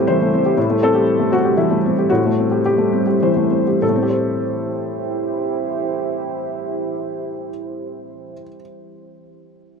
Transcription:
Already playing: A2 G3 A3 C4 E4 F#4 G4 C5
0.07 E3 C5
0.22 A3
0.33 C4
0.46 G4
0.57 A2
0.70 A3
0.83 C4 A4
0.95 G4
1.20 A3
1.31 C4 F#4
1.45 G4
1.57 E3 E4
1.71 A3
1.86 C4
1.98 G4
2.08 A2 G3 E4 F#4 C5
2.26 A3
2.38 C4
2.52 G4
2.66 G4
2.78 A3
2.93 C4
3.07 G4
3.22 E3 C5
3.37 A3
3.51 C4
3.67 G4
3.82 A2 E4 G4 A4 C5
3.89 A3
3.96 C4
4.02 G4
4.09 C5

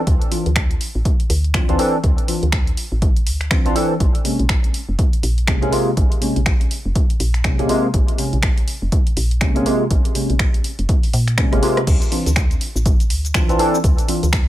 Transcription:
0.07 D2, kick, closed hi-hat
0.22 closed hi-hat
0.31 E3 C4 D4 F4, open hi-hat
0.46 D2, closed hi-hat
0.56 finger snap, kick, closed hi-hat
0.71 closed hi-hat
0.81 open hi-hat
0.95 A1
1.05 kick, closed hi-hat
1.20 closed hi-hat
1.30 D2, open hi-hat
1.44 closed hi-hat
1.54 E3 C4 D4 F4, finger snap, kick, closed hi-hat
1.68 D2 E3 C4 D4 F4, closed hi-hat
1.78 E3 C4 D4 A4, open hi-hat
2.04 D2, kick, closed hi-hat
2.18 closed hi-hat
2.28 E3 C4 D4 F4, open hi-hat
2.43 D2, closed hi-hat
2.52 finger snap, kick, closed hi-hat
2.67 closed hi-hat
2.77 open hi-hat
2.92 A1
3.02 kick, closed hi-hat
3.17 closed hi-hat
3.27 D2, open hi-hat
3.41 finger snap, closed hi-hat
3.50 E3 C4 D4 F4, finger snap, kick, closed hi-hat
3.65 C2 E3 C4 D4 F4, closed hi-hat
3.75 E3 C4 D4 A4, open hi-hat
4.00 A#1, kick, closed hi-hat
4.15 closed hi-hat
4.24 C3 G#3 A#3 C#4, open hi-hat
4.39 A#1, closed hi-hat
4.49 finger snap, kick, closed hi-hat
4.64 closed hi-hat
4.74 open hi-hat
4.89 F1
4.99 kick, closed hi-hat
5.13 closed hi-hat
5.23 A#1, open hi-hat
5.38 closed hi-hat
5.47 C3 G#3 A#3 C#4, finger snap, kick, closed hi-hat
5.62 A#1 C3 G#3 A#3 C#4, closed hi-hat
5.72 C3 G#3 A#3 F4, open hi-hat
5.97 A#1, kick, closed hi-hat
6.12 closed hi-hat
6.21 C3 G#3 A#3 C#4, open hi-hat
6.36 A#1, closed hi-hat
6.46 finger snap, kick, closed hi-hat
6.61 closed hi-hat
6.71 open hi-hat
6.85 F1
6.95 kick, closed hi-hat
7.10 closed hi-hat
7.20 A#1, open hi-hat
7.34 finger snap, closed hi-hat
7.44 C3 G#3 A#3 C#4, finger snap, kick, closed hi-hat
7.59 A#1 C3 G#3 A#3 C#4, closed hi-hat
7.69 C3 G#3 A#3 F4, open hi-hat
7.94 A#1, kick, closed hi-hat
8.08 closed hi-hat
8.18 C3 G#3 A#3 C#4, open hi-hat
8.33 A#1, closed hi-hat
8.43 finger snap, kick, closed hi-hat
8.58 closed hi-hat
8.68 open hi-hat
8.82 F1
8.92 kick, closed hi-hat
9.07 closed hi-hat
9.17 A#1, open hi-hat
9.31 closed hi-hat
9.41 C3 G#3 A#3 C#4, finger snap, kick, closed hi-hat
9.55 A#1 C3 G#3 A#3 C#4, closed hi-hat
9.65 C3 G#3 A#3 F4, open hi-hat
9.91 A#1, kick, closed hi-hat
10.05 closed hi-hat
10.15 C3 G#3 A#3 C#4, open hi-hat
10.30 A#1, closed hi-hat
10.39 finger snap, kick, closed hi-hat
10.54 closed hi-hat
10.64 open hi-hat
10.79 F1, closed hi-hat
10.89 kick, closed hi-hat
11.03 open hi-hat
11.13 A#2, open hi-hat
11.28 finger snap, closed hi-hat
11.38 C3 G#3 A#3 C#4, finger snap, kick, cross-stick, closed hi-hat
11.52 G#1 C3 G#3 A#3 C#4, cross-stick, closed hi-hat
11.62 C3 G#3 A#3 F4, open hi-hat
11.77 cross-stick, closed hi-hat
11.87 D2, kick, closed hi-hat, crash, shaker
12.02 closed hi-hat, shaker
12.11 E3 C4 D4 F4, open hi-hat
12.26 D2, closed hi-hat, shaker
12.36 finger snap, kick, closed hi-hat, shaker
12.51 closed hi-hat, shaker
12.61 open hi-hat
12.76 A1, shaker
12.86 kick, closed hi-hat, shaker
13.00 closed hi-hat, shaker
13.10 D2, open hi-hat
13.25 closed hi-hat, shaker
13.34 E3 C4 D4 F4, finger snap, kick, closed hi-hat, shaker
13.49 C2 E3 C4 D4 F4, closed hi-hat, shaker
13.59 E3 C4 D4 A4, open hi-hat
13.75 shaker
13.84 D2, kick, closed hi-hat, shaker
13.98 closed hi-hat, shaker
14.08 E3 C4 D4 F4, open hi-hat
14.23 D2, closed hi-hat, shaker
14.33 finger snap, kick, closed hi-hat, shaker

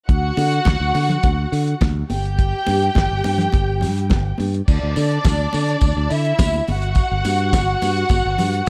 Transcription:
0.09 D2 F#4 F#5, kick, closed hi-hat
0.37 D3, open hi-hat, muted conga
0.52 closed hi-hat
0.65 D2, kick, snare, clap, closed hi-hat, high conga
0.80 D2
0.95 D3, open hi-hat, muted conga
1.09 closed hi-hat, low conga
1.23 D2, kick, closed hi-hat, muted conga
1.52 D3, open hi-hat
1.68 closed hi-hat
1.81 D2, kick, snare, clap, closed hi-hat, high conga
2.10 G1 G4 G5, open hi-hat, high conga
2.25 closed hi-hat
2.39 kick, closed hi-hat
2.67 G2, open hi-hat, muted conga
2.82 closed hi-hat
2.95 G1, kick, snare, clap, closed hi-hat, high conga
3.11 G1
3.24 G2, open hi-hat, muted conga
3.38 closed hi-hat, low conga
3.52 G1, kick, closed hi-hat, muted conga
3.81 G2, open hi-hat, low conga
3.98 closed hi-hat
4.10 G1, kick, snare, clap, closed hi-hat, high conga
4.38 G2, open hi-hat, high conga
4.54 closed hi-hat
4.68 D2 D4 D5, kick, crash, tambourine
4.83 D2
4.96 D3, open hi-hat, tambourine, muted conga
5.12 closed hi-hat
5.25 D2, kick, snare, clap, closed hi-hat, tambourine, high conga
5.53 D3, open hi-hat, tambourine, muted conga
5.69 closed hi-hat
5.81 D2, kick, closed hi-hat, tambourine, muted conga
5.97 D2
6.10 D3 E4 E5, open hi-hat, tambourine
6.25 closed hi-hat
6.39 D2, kick, snare, clap, closed hi-hat, tambourine, high conga
6.54 high conga
6.68 G1 F#4 F#5, open hi-hat, high conga
6.82 closed hi-hat
6.95 kick, closed hi-hat, tambourine
7.11 G1
7.25 G2, open hi-hat, tambourine, muted conga
7.39 closed hi-hat
7.53 G1, kick, snare, clap, closed hi-hat, tambourine, high conga
7.82 G2, open hi-hat, tambourine, muted conga
7.97 closed hi-hat
8.09 G1, kick, closed hi-hat, tambourine, muted conga
8.25 G1
8.38 G2, open hi-hat, tambourine, muted conga, low conga
8.53 closed hi-hat

